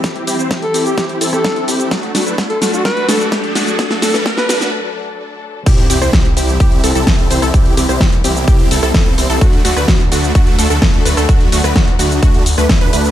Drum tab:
CC |----------------|----------------|----------------|x---------------|
HH |xxo-xxoxxxoxxxox|xxoxxxoxxxoxxxox|xxoxxxox--------|xxoxxxoxxxoxxxox|
SH |x-xxx-xxx-xxx-xx|x-xxx-xxx-xxx-xx|x-xxx-xx--------|x-xxx-xxx-xxx-xx|
SD |o---o---o--ro---|o-o-o-o-o-o-o-o-|oooooooo--------|---ro-------o--r|
BD |o---o---o---o---|o---o---o---o---|o---o-----------|o---o---o---o---|

CC |----------------|----------------|----------------|
HH |xxoxxxoxxxoxxxox|xxoxxxoxxxo-xxox|xxoxxxoxxxoxxxox|
SH |x-xxx-xxx-xxx-xx|x-xxx-xxx-xxx-xx|x-xxx-xxx-xxx-xx|
SD |---ro------ro---|---ro-------o--r|---ro------ro---|
BD |o---o---o---o---|o---o---o---o---|o---o---o---o---|